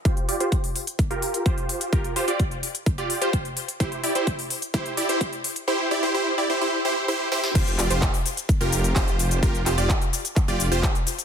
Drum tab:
CC |----------------|----------------|----------------|----------------|
HH |xxoxxooxxxoxxxox|xxoxxxoxxxoxxxox|xxoxxooxxxoxxxox|----------------|
SH |----------------|----------------|----------------|----------------|
CP |----------------|----------------|----------------|----------------|
SD |----------------|----------------|----------------|--------------oo|
BD |o---o---o---o---|o---o---o---o---|o---o---o---o---|----------------|

CC |x---------------|----------------|
HH |xxoxxooxxxoxxxox|xxoxxxoxxxoxxxox|
SH |xxxxxxxxxxxxxxxx|xxxxxxxxxxxxxxxx|
CP |--x-x-------x---|--x-x---x---x---|
SD |----------------|----------------|
BD |o---o---o---o---|o---o---o---o---|